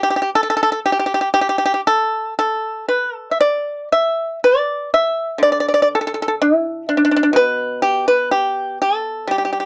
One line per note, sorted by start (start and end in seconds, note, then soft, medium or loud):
0.03 0.09 G4 medium
0.10 0.15 G4 medium
0.16 0.21 G4 medium
0.22 0.29 G4 soft
0.35 0.42 A4 medium
0.43 0.49 A4 medium
0.50 0.56 A4 medium
0.57 0.62 A4 medium
0.63 0.70 A4 medium
0.72 0.79 A4 medium
0.86 0.91 G4 medium
0.92 0.98 G4 soft
0.99 1.05 G4 medium
1.06 1.13 G4 medium
1.14 1.20 G4 medium
1.21 1.28 G4 medium
1.34 1.40 G4 medium
1.41 1.48 G4 soft
1.49 1.56 G4 medium
1.58 1.64 G4 medium
1.66 1.72 G4 medium
1.74 1.80 G4 medium
1.87 2.33 A4 medium
2.39 2.85 A4 medium
2.88 3.14 B4 medium
3.14 3.29 A4 medium
3.31 3.39 E5 soft
3.41 3.88 D5 medium
3.92 4.39 E5 medium
4.44 4.89 D5 medium
4.94 5.39 E5 medium
5.38 8.30 D3 soft
5.43 5.49 D5 medium
5.52 5.57 D5 medium
5.60 5.65 D5 medium
5.68 5.73 D5 medium
5.74 5.79 D5 medium
5.82 5.87 D5 medium
5.95 6.00 A4 medium
6.01 6.06 A4 medium
6.07 6.13 A4 medium
6.14 6.20 A4 medium
6.22 6.27 A4 medium
6.28 6.34 A4 soft
6.42 6.86 E4 medium
6.89 6.95 D4 medium
6.97 7.03 D4 soft
7.05 7.10 D4 medium
7.11 7.15 D4 soft
7.16 7.22 D4 medium
7.23 7.30 D4 soft
7.33 9.65 B2 medium
7.33 7.80 B4 medium
7.82 8.05 G4 medium
8.08 8.30 B4 medium
8.31 8.77 G4 medium
8.82 9.27 A4 medium
9.27 9.65 G3 soft
9.27 9.37 G4 medium
9.38 9.44 G4 soft
9.45 9.52 G4 soft
9.53 9.59 G4 soft
9.60 9.65 G4 soft